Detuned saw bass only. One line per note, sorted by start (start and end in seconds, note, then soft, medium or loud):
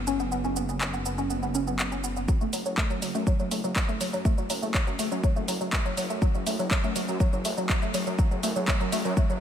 0.00 2.26 F#1 medium
2.41 2.50 F#1 medium
2.53 2.63 F#1 medium
2.66 2.75 F#1 medium
2.90 2.99 F#2 medium
3.02 3.12 F#1 loud
3.15 3.24 F#2 medium
3.39 3.49 F#1 medium
3.51 3.61 F#1 loud
3.64 3.73 F#1 medium
3.89 3.98 F#1 medium
4.01 4.10 F#1 medium
4.13 4.22 F#2 medium
4.38 4.47 F#1 medium
4.50 4.59 F#1 loud
4.62 4.72 F#1 medium
4.87 4.96 F#2 medium
4.99 5.09 F#1 loud
5.12 5.21 F#2 medium
5.36 5.45 F#1 medium
5.48 5.58 F#1 loud
5.61 5.70 F#1 medium
5.85 5.94 F#1 medium
5.97 6.07 F#1 loud
6.10 6.19 F#2 medium
6.35 6.44 F#1 medium
6.46 6.56 F#1 medium
6.59 6.68 F#1 medium
6.84 6.93 F#2 medium
6.96 7.05 F#1 loud
7.08 7.17 F#2 medium
7.33 7.42 F#1 medium
7.45 7.54 F#1 loud
7.57 7.67 F#1 medium
7.82 7.91 F#1 medium
7.94 8.04 F#1 loud
8.07 8.16 F#2 medium
8.31 8.40 F#1 medium
8.43 8.53 F#1 loud
8.56 8.65 F#1 loud
8.80 8.90 F#2 medium
8.92 9.02 F#1 medium
9.05 9.14 F#2 medium
9.30 9.39 F#1 medium